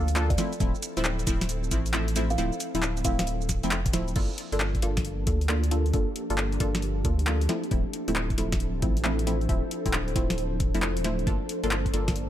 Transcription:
Already playing: D2 F3 A#3 D4 A4
0.08 closed hi-hat, shaker
0.16 A#3 D4 F4 A4, clap, shaker
0.30 D5, kick, closed hi-hat
0.38 F3 A3 C4 E4 D5, snare, open hi-hat, shaker
0.53 closed hi-hat, shaker
0.60 D1 F3 A3 C4 E4, kick, closed hi-hat, shaker
0.75 shaker
0.83 open hi-hat, shaker
0.97 D1 F3 A3 C4 E4, closed hi-hat, shaker
1.05 clap, shaker
1.19 closed hi-hat, shaker
1.27 D1 F3 A3 C4 E4, kick, open hi-hat, shaker
1.41 snare, closed hi-hat, shaker
1.49 closed hi-hat, shaker
1.64 shaker
1.71 A1 F3 A3 C4 E4, kick, open hi-hat, shaker
1.86 closed hi-hat, shaker
1.94 F3 A3 C4 E4, clap, shaker
2.08 closed hi-hat
2.16 F3 A3 C4 E4, open hi-hat, shaker
2.30 F5, closed hi-hat, shaker
2.38 D1 F3 A3 C4 E4 F5, closed hi-hat, shaker
2.53 shaker
2.60 open hi-hat, shaker
2.75 D1 F3 A3 C4 E4, closed hi-hat, shaker
2.83 clap, shaker
2.97 closed hi-hat, shaker
3.05 D1 F3 A3 C4 E4 F5, kick, open hi-hat, shaker
3.19 F5, snare, closed hi-hat, shaker
3.27 closed hi-hat, shaker
3.41 shaker
3.49 kick, snare, open hi-hat, shaker
3.63 F1 F3 A3 C4 E4, closed hi-hat, shaker
3.71 clap, shaker
3.86 D1, kick, closed hi-hat, shaker
3.93 F3 A3 C4 E4, snare, open hi-hat, shaker
4.08 closed hi-hat, shaker
4.16 G1 F3 A#3 D4 F4 A4, kick, closed hi-hat, crash
4.38 open hi-hat
4.52 G1 A#3 D4 F4 A4, closed hi-hat
4.60 G4, clap
4.75 A#3, kick, closed hi-hat
4.82 G1 A#3 D4 F4 A4, open hi-hat
4.97 kick, snare, closed hi-hat
5.05 closed hi-hat
5.27 D2 A#3 D4 F4 A4, kick, open hi-hat
5.41 closed hi-hat
5.49 A#3 D4 F4 A4, clap
5.64 closed hi-hat
5.71 A#3 D4 F4 A4, open hi-hat
5.86 closed hi-hat
5.93 G1 A#3 D4 F4 A4, kick, closed hi-hat
6.16 open hi-hat
6.30 G1 A#3 D4 F4 A4, closed hi-hat
6.38 clap
6.52 closed hi-hat
6.60 G1 A#3 D4 F4 A4, kick, open hi-hat
6.75 snare, closed hi-hat
6.82 closed hi-hat
7.05 D2 A#3 D4 F4 A4, kick, open hi-hat
7.19 closed hi-hat
7.27 A#3 D4 F4 A4, clap
7.41 closed hi-hat
7.49 F3 A3 C4 E4, snare, open hi-hat
7.64 closed hi-hat
7.71 D1 F3 A3 C4 E4, kick, closed hi-hat
7.76 A4
7.93 open hi-hat
8.08 D1 F3 A3 C4 E4, closed hi-hat
8.16 clap
8.23 C5
8.30 kick, closed hi-hat
8.38 D1 F3 A3 C4 E4, open hi-hat
8.52 kick, snare, closed hi-hat
8.60 closed hi-hat
8.82 A1 F3 A3 C4 E4, kick, open hi-hat
8.97 closed hi-hat
9.04 F3 A3 C4 E4, clap
9.19 closed hi-hat
9.27 F3 A3 C4 E4, open hi-hat
9.41 closed hi-hat
9.49 D1 F3 A3 C4 E4, kick, closed hi-hat
9.71 open hi-hat
9.86 D1 F3 A3 C4 E4, kick, closed hi-hat
9.93 clap
10.08 closed hi-hat
10.16 D1 F3 A3 C4 E4, kick, open hi-hat
10.30 snare, closed hi-hat
10.38 closed hi-hat
10.60 kick, open hi-hat
10.74 F1 F3 A3 C4 E4, closed hi-hat
10.82 clap
10.97 D1, closed hi-hat
11.04 F3 A3 C4 E4, snare, open hi-hat
11.19 closed hi-hat
11.27 G1 A#3 D4 F4 A4, kick, closed hi-hat
11.41 A#3 G4
11.49 open hi-hat
11.63 G1 A#3 D4 F4 A4, closed hi-hat
11.71 clap
11.86 kick, closed hi-hat
11.93 G1 A#3 D4 F4 A4, open hi-hat
12.08 kick, snare, closed hi-hat
12.16 closed hi-hat

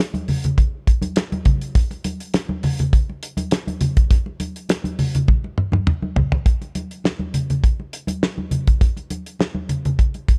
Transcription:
0.14 closed hi-hat, muted conga, high conga
0.28 open hi-hat, low conga
0.44 closed hi-hat, low conga
0.58 kick, closed hi-hat, muted conga
0.87 kick, closed hi-hat
1.02 closed hi-hat, high conga
1.16 snare, closed hi-hat, muted conga
1.32 closed hi-hat, muted conga, high conga
1.45 kick, closed hi-hat, high conga, low conga
1.61 closed hi-hat
1.75 kick, closed hi-hat, muted conga
1.91 closed hi-hat, muted conga
2.04 closed hi-hat, high conga
2.20 closed hi-hat
2.34 snare, closed hi-hat, muted conga
2.49 high conga
2.63 open hi-hat, low conga
2.79 closed hi-hat, low conga
2.93 kick, closed hi-hat, muted conga
3.09 muted conga
3.23 closed hi-hat
3.37 closed hi-hat, high conga
3.51 snare, closed hi-hat, muted conga
3.67 closed hi-hat, muted conga, high conga
3.81 closed hi-hat, high conga, low conga
3.97 kick, closed hi-hat
4.10 kick, closed hi-hat, muted conga
4.26 muted conga
4.40 closed hi-hat, high conga
4.56 closed hi-hat
4.69 snare, closed hi-hat, muted conga
4.84 closed hi-hat, high conga
4.99 open hi-hat, low conga
5.15 closed hi-hat, low conga
5.28 kick, high tom, muted conga
5.44 muted conga
5.58 mid tom
5.72 mid tom, high conga
5.87 mid tom, muted conga
6.02 high conga
6.16 floor tom, high conga, low conga
6.32 floor tom
6.46 kick, closed hi-hat, muted conga
6.62 closed hi-hat, muted conga
6.75 closed hi-hat, high conga
6.91 closed hi-hat
7.04 snare, muted conga
7.19 muted conga, high conga
7.34 closed hi-hat, low conga
7.50 closed hi-hat, low conga
7.64 kick, closed hi-hat
7.80 muted conga
7.93 closed hi-hat
8.07 closed hi-hat, high conga
8.23 snare
8.38 muted conga, high conga
8.51 closed hi-hat, high conga, low conga
8.67 kick, closed hi-hat
8.81 kick, closed hi-hat, muted conga
8.97 closed hi-hat, muted conga
9.10 closed hi-hat, high conga
9.26 closed hi-hat
9.39 snare, muted conga
9.55 high conga
9.69 closed hi-hat, low conga
9.85 closed hi-hat, low conga
9.99 kick, closed hi-hat
10.14 closed hi-hat, muted conga
10.28 kick, closed hi-hat

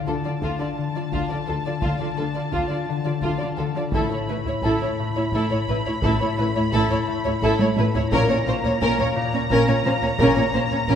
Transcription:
Already playing: D3 A3 A5
0.06 D2 D3 D4 F4 A4
0.24 D3 F4 D5
0.42 D2 D3 D4 F4, taiko
0.60 D3 F4 D5
0.78 D3
0.94 D3 F4 D5
1.12 D2 D3 D4 F4, taiko
1.29 D3 F4 D5
1.47 D2 D3 F4 A4
1.65 D3 F4 D5
1.81 D2 D3 F4, taiko
1.99 D3 F4 D5
2.16 D2 D3 D4 F4 A4
2.34 D3 F4 D5
2.52 D2 D3 D4 F4, taiko
2.68 D3 F4 D5
2.89 D3
3.04 D3 F4 D5
3.21 D2 D3 D4 F4, taiko
3.38 D3 F4 D5
3.57 D2 D3 F4 A4
3.75 D3 F4 D5
3.92 A1 A2 E4 A4 B5, taiko
4.10 A2 E4 C#5
4.28 A1 A2 A3 E4 B4
4.45 A2 E4 C#5, taiko low
4.62 A1 A2 A3 E4 A4, taiko
4.80 A2 E4 C#5, taiko low
4.99 A2
5.15 A2 E4 C#5, taiko low
5.32 A1 A2 A3 E4 A4, taiko
5.50 A2 E4 C#5
5.68 A1 A2 E4 B4
5.85 A2 E4 C#5, taiko low
6.02 A1 A2 E4 A4, taiko
6.21 A2 E4 C#5
6.38 A1 A2 A3 E4 B4
6.54 A2 E4 C#5, taiko low
6.72 A1 A2 A3 E4 A4, taiko
6.90 A2 E4 C#5, taiko low
7.07 A2
7.24 A2 E4 C#5, taiko low
7.42 A1 A2 A3 E4 A4, taiko
7.59 A2 E4 C#5, taiko high
7.77 A1 A2 E4 B4, taiko high
7.94 A2 E4 C#5, taiko low
8.11 A#1 A#2 C#4 A#4 A#5, taiko
8.29 A#2 C#4 C#5
8.46 A#1 A#2 A#3 C#4 C5
8.64 A#2 C#4 C#5, taiko low
8.81 A#1 A#2 A#3 C#4 A#4, taiko
8.99 A#2 C#4 C#5, taiko low
9.15 A#2
9.33 A#2 C#4 C#5, taiko low
9.50 A#1 A#2 A#3 C#4 A#4, taiko
9.68 A#2 C#4 C#5
9.85 A#1 A#2 C#4 C5
10.02 A#2 C#4 C#5, taiko low
10.18 A#1 A#2 C#4 A#4, taiko
10.36 A#2 C#4 C#5
10.53 A#1 A#2 A#3 C#4 C5
10.71 A#2 C#4 C#5, taiko low
10.88 A#1 A#2 A#3 C#4 A#4, taiko

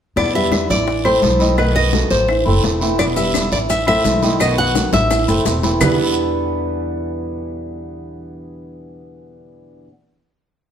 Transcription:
0.16 E2 B2 D3 G3 B3 E4 D5, high bongo, high conga, long guiro, claves
0.34 G3 G4 B4 E5, high bongo, high conga
0.51 D3 G3 B3 E4, high bongo, high conga, short guiro, claves
0.69 A1 E3 E4 D5 E5, high conga, short guiro
0.87 muted steel-string acoustic guitar stroke, high bongo, high conga, long guiro
1.04 A3 C4 E4 A4 C5, high bongo, high conga, claves
1.22 B1 E3 A3 C4 E4, high bongo, low bongo, high conga, short guiro
1.39 D#3 A3 C4 D#4 E4 D#5, high bongo, high conga, short guiro
1.57 B2 D#3 A3 B3 D#4 F#4 B4 D#5, high bongo, high conga, long guiro, claves
1.75 D#5, high bongo, high conga
1.92 D#3 F#3 A3 B3 F#4 A4, high bongo, high conga, short guiro
2.10 A1 C5, short guiro
2.28 E3 E4 E5, muted steel-string acoustic guitar stroke, high bongo, high conga, long guiro, claves
2.45 F#1 A3 C4 E4 A4 C5, high bongo, high conga
2.63 E1 E3 A3 C4 E4, high bongo, low bongo, high conga, short guiro
2.81 E3 A3 C4 E4 E5, high bongo, high conga, short guiro
2.98 B2 D3 G3 B3 E4 D5, high bongo, high conga, long guiro, claves, maracas
3.16 G3 G4 B4 E5, high bongo, high conga, maracas
3.34 D3 G3 B3 E4, high bongo, high conga, short guiro, claves, maracas
3.52 A1 E3 E4 D5 E5, high conga, short guiro, maracas
3.69 E5, muted steel-string acoustic guitar stroke, high bongo, high conga, long guiro, maracas
3.86 A3 C4 E4 A4 C5 E5, high bongo, high conga, claves
4.04 B1 E3 A3 C4 E4, high bongo, low bongo, high conga, short guiro, maracas
4.22 D#3 A3 C4 D#4 E4 D#5, high bongo, high conga, short guiro, maracas
4.40 B2 D#3 A3 B3 D#4 F#4 D#5, high bongo, high conga, long guiro, claves, maracas
4.58 F#5, high bongo, high conga
4.75 D#3 F#3 A3 B3 F#4 A4, high bongo, high conga, short guiro, maracas
4.93 A1 E5, high bongo, short guiro, maracas
5.11 E3 E4 E5, muted steel-string acoustic guitar stroke, high bongo, high conga, long guiro, claves, maracas
5.28 F#1 A3 C4 E4 A4 C5, low bongo, high conga, maracas
5.45 E1 E3 A3 C4 E4, low bongo, short guiro, maracas
5.63 E3 A3 C4 E4 E5, low bongo, high conga, short guiro, maracas
5.80 E2 B2 D3 E3 G3 B3 D4 E4 G4 B4, low bongo, low conga, long guiro, claves, maracas

